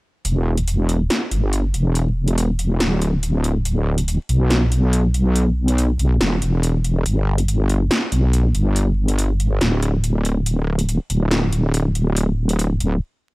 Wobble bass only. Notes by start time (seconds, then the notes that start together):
0.25 E1
1.32 G1
1.74 E1
2.80 D1
4.29 B1
6.00 B1
6.21 E1
6.42 E1
7.06 G1
8.12 B1
8.55 G1
9.61 D1
11.10 D1
12.80 D1